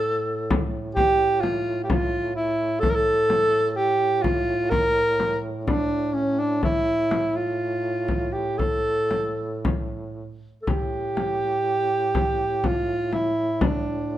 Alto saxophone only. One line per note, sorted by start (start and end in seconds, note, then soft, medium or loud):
0.00 0.71 A4 medium
0.95 1.43 G4 loud
1.41 1.82 F4 medium
1.84 2.35 F4 medium
1.84 1.89 G4 medium
2.35 2.81 E4 medium
2.80 2.92 A4 medium
2.90 2.97 A#4 medium
2.95 3.71 A4 loud
3.71 3.77 A4 medium
3.76 4.24 G4 medium
4.22 4.72 F4 medium
4.70 5.40 A#4 loud
5.65 6.15 D4 medium
6.14 6.41 C#4 medium
6.39 6.63 D4 medium
6.64 7.38 E4 medium
7.36 8.34 F4 medium
8.33 8.59 G4 medium
8.58 9.63 A4 medium
10.62 10.71 A4 soft
10.69 12.68 G4 medium
12.67 13.15 F4 medium
13.14 13.64 E4 medium
13.62 14.18 D4 medium